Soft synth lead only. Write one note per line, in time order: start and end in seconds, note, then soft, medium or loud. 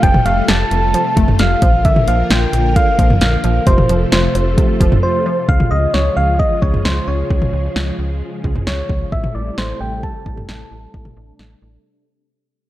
0.03 0.27 G5 loud
0.26 0.50 F5 loud
0.48 1.41 A5 loud
1.39 1.87 F5 loud
1.85 2.07 E5 loud
2.08 2.29 F5 loud
2.31 2.78 G5 loud
2.76 3.21 F5 loud
3.21 3.68 F5 loud
3.67 4.12 C5 loud
4.12 4.99 C5 medium
5.03 5.50 C5 loud
5.49 5.72 F5 loud
5.71 5.95 D#5 loud
5.94 6.18 C#5 medium
6.17 6.41 F5 loud
6.39 6.63 D#5 loud
6.62 6.86 C#5 medium
6.85 7.09 C5 medium
7.08 8.44 C#5 loud
8.67 9.14 C#5 loud
9.12 9.36 E5 loud
9.35 9.59 D5 medium
9.58 9.80 C5 medium
9.81 10.05 G5 loud
10.03 12.31 A5 loud